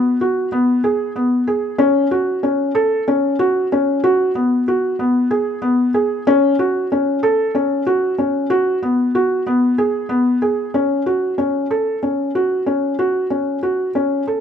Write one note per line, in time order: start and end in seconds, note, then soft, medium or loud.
0.00 0.16 B3 medium
0.21 0.48 F#4 medium
0.52 0.79 B3 medium
0.84 1.11 G#4 medium
1.16 1.43 B3 medium
1.47 1.75 G#4 medium
1.78 2.06 C#4 medium
2.11 2.39 F#4 medium
2.43 2.71 C#4 medium
2.75 3.02 A4 medium
3.08 3.35 C#4 medium
3.39 3.67 F#4 medium
3.72 3.99 C#4 medium
4.04 4.31 F#4 medium
4.35 4.62 B3 medium
4.68 4.95 F#4 medium
4.99 5.26 B3 medium
5.31 5.58 G#4 medium
5.62 5.90 B3 medium
5.94 6.22 G#4 medium
6.27 6.54 C#4 medium
6.59 6.86 F#4 medium
6.92 7.19 C#4 medium
7.23 7.50 A4 medium
7.55 7.82 C#4 medium
7.87 8.14 F#4 medium
8.18 8.46 C#4 medium
8.50 8.77 F#4 medium
8.83 9.10 B3 medium
9.15 9.42 F#4 medium
9.47 9.74 B3 medium
9.78 10.05 G#4 medium
10.09 10.37 B3 medium
10.42 10.69 G#4 medium
10.74 11.01 C#4 medium
11.06 11.34 F#4 medium
11.38 11.65 C#4 medium
11.71 11.98 A4 medium
12.03 12.30 C#4 medium
12.35 12.62 F#4 medium
12.66 12.94 C#4 medium
12.99 13.26 F#4 medium
13.30 13.58 C#4 medium
13.63 13.90 F#4 medium
13.95 14.22 C#4 medium
14.27 14.40 A4 medium